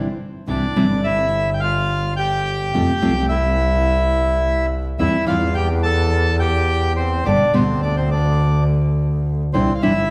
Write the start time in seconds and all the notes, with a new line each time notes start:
Already playing: G1
0.47 C2 C3 E3 G3 C4 D4 E4 D5
0.75 G1 C3 E3 G3 C4 E4
1.04 E4 E5
1.54 G5
1.60 F4 F5
2.16 G4 G5
2.74 F2 C3 F3 A3 C4 F4
3.02 C2 C3 F3 A3 C4 F4
3.29 E4 E5
4.99 E2 E3 G3 C4 E4 E5
5.27 E2 E3 G3 C4 E4 F4 F5
5.55 G4 G5
5.83 A4 A5
6.39 G4 G5
6.97 C4 C5
7.25 G1 B2 D3 G3 B3 D4 G4 D5
7.53 D2 B2 D3 G3 B3 C4 G4 C5
7.82 D4 D5
7.96 C4 C5
8.11 D4 D5
9.53 C2 C3 E3 G3 C4 D4 E4 C5
9.75 F5
9.82 G1 C3 E3 G3 D4 E4 E5